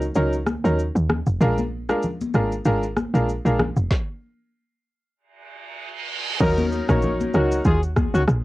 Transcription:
0.00 0.11 C#2 medium
0.00 downlifter medium
0.00 shaker medium
0.15 0.57 C#2 medium
0.15 0.32 F#3 medium
0.15 0.33 C#4 medium
0.15 0.33 D#4 medium
0.15 0.33 A#4 medium
0.15 shaker medium
0.33 shaker medium
0.46 cross-stick medium
0.46 high conga medium
0.46 shaker soft
0.64 0.90 D#2 loud
0.64 0.78 F#3 medium
0.64 0.78 C#4 medium
0.64 0.78 D#4 medium
0.64 0.78 A#4 medium
0.64 shaker medium
0.79 shaker medium
0.95 1.22 D#2 loud
0.95 shaker medium
1.09 cross-stick loud
1.09 high conga medium
1.09 low conga medium
1.26 1.38 F1 medium
1.26 shaker medium
1.40 1.93 A#1 loud
1.40 1.57 G#3 medium
1.40 1.57 D4 medium
1.40 1.58 F4 medium
1.40 1.58 A#4 loud
1.40 low conga medium
1.40 shaker medium
1.58 high conga medium
1.58 shaker medium
1.89 2.03 G#3 medium
1.89 2.03 D4 medium
1.89 2.03 F4 medium
1.89 2.03 A#4 medium
1.89 cross-stick loud
1.89 shaker medium
2.02 low conga medium
2.02 shaker medium
2.21 high conga medium
2.21 shaker medium
2.34 2.61 G#1 medium
2.34 2.51 G#3 medium
2.34 2.51 D4 medium
2.34 2.51 F4 medium
2.34 2.51 A#4 medium
2.34 cross-stick medium
2.34 shaker medium
2.52 shaker medium
2.65 3.06 G#1 medium
2.65 2.82 G#3 medium
2.65 2.82 D4 medium
2.65 2.83 F4 medium
2.65 2.83 A#4 medium
2.65 shaker medium
2.83 shaker medium
2.97 cross-stick medium
2.97 high conga medium
2.97 shaker soft
3.14 3.40 A#1 loud
3.14 3.28 G#3 medium
3.14 3.28 D4 medium
3.14 3.28 F4 medium
3.14 3.28 A#4 medium
3.14 shaker medium
3.29 shaker medium
3.45 3.72 A#1 medium
3.45 3.59 G#3 medium
3.45 3.59 D4 medium
3.45 3.59 F4 medium
3.45 3.59 A#4 medium
3.45 shaker medium
3.59 cross-stick loud
3.59 high conga medium
3.59 low conga medium
3.76 3.88 F1 medium
3.76 shaker medium
3.91 kick loud
3.91 snare medium
5.16 reverse cymbal medium
6.40 6.82 D#2 loud
6.40 6.85 F#3 medium
6.40 6.66 F#3 loud
6.40 6.85 C#4 medium
6.40 6.85 D#4 medium
6.40 6.66 D#4 loud
6.40 6.66 A#4 loud
6.40 6.85 A#4 medium
6.40 kick loud
6.40 crash medium
6.40 low conga medium
6.40 shaker medium
6.58 high conga medium
6.58 shaker medium
6.72 shaker medium
6.89 7.27 A#1 medium
6.89 7.31 F#3 medium
6.89 7.14 A#3 medium
6.89 7.31 C#4 medium
6.89 7.31 D#4 medium
6.89 7.14 F#4 medium
6.89 7.31 A#4 medium
6.89 7.14 C#5 medium
6.89 kick medium
6.89 cross-stick loud
6.89 high conga medium
6.89 shaker loud
7.02 low conga medium
7.02 shaker medium
7.21 high conga medium
7.21 shaker medium
7.34 7.61 C#2 medium
7.34 7.59 D#3 medium
7.34 7.63 F#3 medium
7.34 7.63 C#4 medium
7.34 7.60 C#4 medium
7.34 7.64 D#4 medium
7.34 7.59 F#4 medium
7.34 7.64 A#4 medium
7.34 cross-stick medium
7.34 shaker medium
7.52 shaker loud
7.65 8.06 D#2 medium
7.65 7.79 G#3 medium
7.65 7.79 F4 medium
7.65 7.79 G#4 medium
7.65 kick medium
7.65 shaker medium
7.83 shaker medium
7.96 kick medium
7.96 cross-stick medium
7.96 high conga medium
7.96 shaker soft
8.14 8.26 C#2 medium
8.14 8.22 D#3 medium
8.14 8.22 C#4 medium
8.14 8.22 F#4 medium
8.14 shaker medium
8.28 8.44 A#1 loud
8.28 cross-stick loud
8.28 shaker medium

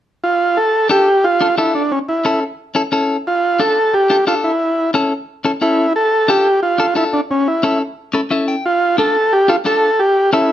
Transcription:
0.24 0.58 F4 medium
0.57 0.88 A4 medium
0.89 1.08 D4 medium
0.89 1.08 F4 medium
0.89 1.25 G4 loud
0.89 1.08 A4 medium
1.24 1.56 F4 medium
1.41 1.47 D4 medium
1.41 1.47 F4 medium
1.41 1.47 A4 medium
1.58 1.81 D4 medium
1.58 1.74 E4 medium
1.58 1.81 F4 medium
1.58 1.82 A4 medium
1.75 1.92 D4 medium
1.92 1.99 C#4 medium
2.09 2.40 E4 medium
2.25 2.43 C#4 medium
2.25 2.43 E4 medium
2.25 2.43 A4 medium
2.75 2.81 C#4 medium
2.75 2.82 E4 medium
2.75 2.82 A4 medium
2.92 3.16 C#4 medium
2.92 3.16 E4 medium
2.92 3.16 A4 loud
3.27 3.61 F4 medium
3.60 3.77 D4 medium
3.60 3.78 F4 medium
3.60 3.95 A4 loud
3.60 3.78 A4 medium
3.94 4.25 G4 medium
4.10 4.16 D4 medium
4.10 4.16 F4 medium
4.10 4.17 A4 medium
4.27 4.51 D4 medium
4.27 4.35 F4 medium
4.27 4.51 F4 medium
4.27 4.51 A4 medium
4.44 4.91 E4 medium
4.94 5.12 C#4 medium
4.94 5.12 E4 medium
4.94 5.12 A4 medium
5.45 5.51 C#4 medium
5.45 5.51 E4 medium
5.45 5.51 A4 medium
5.61 5.85 C#4 medium
5.61 5.93 E4 medium
5.61 5.85 E4 medium
5.61 5.86 A4 medium
5.96 6.30 A4 loud
6.28 6.46 D4 medium
6.28 6.47 F4 medium
6.28 6.60 G4 medium
6.28 6.47 A4 medium
6.63 6.94 F4 medium
6.78 6.85 D4 medium
6.78 6.85 F4 soft
6.78 6.86 A4 medium
6.95 7.19 D4 medium
6.95 7.04 E4 medium
6.95 7.20 F4 medium
6.95 7.20 A4 medium
7.13 7.21 D4 medium
7.31 7.48 C#4 medium
7.48 7.79 E4 medium
7.63 7.81 C#4 medium
7.63 7.81 E4 medium
7.63 7.82 A4 medium
8.14 8.20 C#4 medium
8.14 8.20 E4 medium
8.14 8.20 A4 medium
8.30 8.54 C#4 medium
8.30 8.55 E4 medium
8.30 8.55 A4 medium
8.30 8.47 E5 medium
8.48 8.64 G5 medium
8.66 8.97 F4 medium
8.98 9.16 D4 medium
8.98 9.16 F4 medium
8.98 9.33 A4 loud
8.98 9.16 A4 medium
9.33 9.50 G4 loud
9.48 9.54 D4 medium
9.48 9.55 F4 medium
9.48 9.57 F4 medium
9.48 9.55 A4 medium
9.65 9.89 D4 medium
9.65 9.89 F4 medium
9.65 9.90 A4 medium
9.65 10.01 A4 loud
9.99 10.31 G4 medium
10.33 10.51 C#4 medium
10.33 10.52 E4 medium
10.33 10.51 E4 medium
10.33 10.51 A4 medium

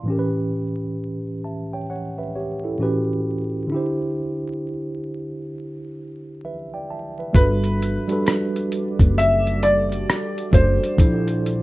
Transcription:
0.03 2.74 A2 medium
0.03 2.75 E3 medium
0.08 2.76 C#4 medium
0.08 1.42 G4 medium
0.12 0.18 A#4 medium
0.19 1.47 B4 medium
1.44 1.72 E5 soft
1.44 1.71 A5 medium
1.73 1.89 C#5 medium
1.73 1.89 G5 medium
1.90 2.17 C#5 medium
1.90 2.17 F#5 medium
2.18 2.34 B4 medium
2.18 2.34 E5 medium
2.35 2.63 G4 soft
2.35 2.62 C#5 medium
2.64 3.07 E4 medium
2.64 3.07 A4 medium
2.78 3.70 A2 medium
2.78 3.71 E3 medium
2.78 3.71 C#4 medium
2.78 3.71 F#4 medium
2.78 3.72 G4 medium
2.83 3.72 B4 medium
3.67 7.29 D3 medium
3.67 7.30 D4 medium
3.72 7.31 E4 medium
3.72 7.32 G4 medium
3.76 6.42 C5 medium
6.45 6.72 B4 medium
6.45 6.72 E5 medium
6.74 6.89 D5 medium
6.74 6.89 G5 medium
6.90 7.17 E5 medium
6.90 7.17 A5 medium
7.19 7.36 B4 soft
7.19 7.62 E5 medium
7.33 7.96 G1 loud
7.33 7.77 G3 medium
7.33 10.95 G3 medium
7.33 7.77 D4 medium
7.33 10.95 F#4 medium
7.33 7.78 F#4 medium
7.33 10.95 A4 medium
7.33 7.78 A4 medium
7.33 9.13 B4 medium
7.33 10.95 D5 medium
7.33 kick loud
7.33 closed hi-hat medium
7.38 7.79 B4 medium
7.64 closed hi-hat soft
7.82 closed hi-hat medium
8.08 9.15 G3 medium
8.08 9.15 D4 medium
8.08 9.16 F#4 medium
8.08 9.16 A4 medium
8.08 closed hi-hat soft
8.12 9.17 B4 medium
8.26 cross-stick loud
8.26 closed hi-hat medium
8.56 closed hi-hat soft
8.72 closed hi-hat medium
9.00 10.03 F#1 medium
9.00 kick loud
9.00 closed hi-hat soft
9.18 9.64 E5 loud
9.18 closed hi-hat medium
9.47 closed hi-hat soft
9.63 10.49 D5 loud
9.63 closed hi-hat medium
9.92 closed hi-hat soft
10.10 cross-stick loud
10.10 closed hi-hat medium
10.38 closed hi-hat soft
10.51 10.77 F#1 loud
10.51 10.85 G3 medium
10.51 10.85 D4 medium
10.51 10.86 F#4 medium
10.51 10.86 A4 medium
10.51 11.63 C5 medium
10.51 kick loud
10.51 closed hi-hat medium
10.56 10.87 D5 medium
10.84 closed hi-hat medium
10.97 11.63 A#1 loud
10.97 11.40 A#2 medium
10.97 11.41 F3 medium
10.97 11.63 A3 medium
10.97 11.63 A#3 medium
10.97 11.63 D4 medium
10.97 11.41 D4 medium
10.97 11.42 E4 medium
10.97 11.42 A4 medium
10.97 kick loud
10.97 closed hi-hat medium
11.01 11.43 C5 medium
11.28 closed hi-hat soft
11.46 closed hi-hat medium

